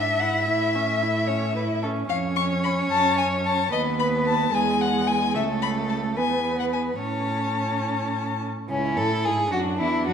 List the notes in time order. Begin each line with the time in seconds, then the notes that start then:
Already playing: G#2 D4 E5
0.20 E4 F#5
0.46 A2 E4 E5
0.75 C#4
1.02 E4
1.28 C#4 C#5
1.55 E4 B4
1.83 C#4 A4
2.09 F2 C#4 C#5 F5
2.36 C#6
2.64 B5
2.91 F#2 A5
3.18 G#5
3.45 A5
3.72 D#2 B3 B4 D#5
4.00 B5
4.26 A5
4.52 E2 G#3 G#4 G#5
4.81 F#5
5.07 G#5
5.34 C#2 A3 A4 E5
5.62 B5
5.89 A5
6.17 E2 B3 B4 G#5
6.60 F#5
6.73 G#5
7.00 A2 C#4 C#5 A5
8.70 C#2 C#4 E4
8.97 A2 A4
9.25 G#2 G#4
9.52 F#2 D4 F#4
9.79 E2 E4
10.07 F#2 F#4